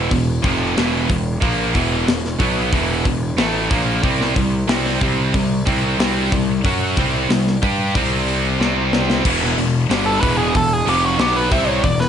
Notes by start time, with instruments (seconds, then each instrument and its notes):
Already playing: distorted electric guitar E2 B2 E3
0.11 picked electric bass E1, distorted electric guitar E2 B2, kick, open hi-hat
0.42 picked electric bass F1, distorted electric guitar F2 C3 F3, kick, open hi-hat
0.76 picked electric bass E1, distorted electric guitar E2 B2 E3, snare, open hi-hat
1.09 picked electric bass E1, distorted electric guitar E2 B2, kick, open hi-hat
1.42 picked electric bass A#1, distorted electric guitar A#2 F3 A#3, kick, open hi-hat
1.74 picked electric bass E1, distorted electric guitar E2 B2 E3, kick, open hi-hat
2.08 picked electric bass E1, distorted electric guitar E2 B2, snare, open hi-hat
2.25 snare
2.39 picked electric bass B1, distorted electric guitar B2 F#3 B3, kick, open hi-hat
2.72 picked electric bass E1, distorted electric guitar E2 B2 E3, kick, open hi-hat
3.05 picked electric bass E1, distorted electric guitar E2 B2, kick, open hi-hat
3.38 picked electric bass A1, distorted electric guitar A2 E3 A3, snare, open hi-hat
3.70 picked electric bass A#1, distorted electric guitar A#2 F3 A#3, kick, open hi-hat
4.03 picked electric bass C2, distorted electric guitar C3 G3 C4, kick, open hi-hat
4.21 snare
4.35 picked electric bass C2, distorted electric guitar C3 G3, kick, open hi-hat
4.68 picked electric bass C2, distorted electric guitar C3 G3 C4, snare, open hi-hat
4.86 snare
5.01 picked electric bass C2, distorted electric guitar C3 G3 C4, kick, open hi-hat
5.34 picked electric bass C2, distorted electric guitar C3 G3, kick, open hi-hat
5.67 picked electric bass C2, distorted electric guitar C3 G3 C4, kick, open hi-hat
5.98 picked electric bass C2, distorted electric guitar C3 G3 C4, snare, open hi-hat
6.32 picked electric bass C2, distorted electric guitar C3 G3, kick, open hi-hat
6.64 picked electric bass F#2, distorted electric guitar F#3 C#4 F#4, kick, open hi-hat
6.97 picked electric bass C2, distorted electric guitar C3 G3 C4, kick, open hi-hat
7.29 picked electric bass C2, distorted electric guitar C3 G3, snare, open hi-hat
7.47 snare
7.62 picked electric bass G2, distorted electric guitar G3 D4 G4, kick, open hi-hat
7.95 picked electric bass C2, distorted electric guitar C3 G3 C4, kick, open hi-hat
8.28 open hi-hat
8.59 picked electric bass C2, distorted electric guitar C3 G3 C4, snare
8.93 snare
9.10 snare
9.25 picked electric bass E1, distorted electric guitar E2 B2 E3, kick, crash
9.43 snare
9.57 picked electric bass E1, distorted electric guitar E2 B2, open hi-hat
9.90 picked electric bass G1, distorted electric guitar G2 D3 G3, snare, open hi-hat
10.06 lead electric guitar A4
10.21 picked electric bass E1, distorted electric guitar E2 B2 E3, lead electric guitar B4, kick, open hi-hat
10.38 lead electric guitar G#4
10.55 picked electric bass E1, distorted electric guitar E2 B2, lead electric guitar A4, kick, open hi-hat
10.73 lead electric guitar G#4
10.87 picked electric bass F1, distorted electric guitar F2 C3 F3, lead electric guitar G4, open hi-hat
11.06 lead electric guitar F#4
11.19 picked electric bass B1, distorted electric guitar B2 F#3 B3, lead electric guitar G4, snare, open hi-hat
11.36 lead electric guitar B4
11.51 picked electric bass C2, distorted electric guitar C3 G3 C4, lead electric guitar E5, kick, open hi-hat
11.68 lead electric guitar C#5
11.84 picked electric bass E1, distorted electric guitar E2 B2, lead electric guitar D5, kick, open hi-hat
12.00 lead electric guitar B4, snare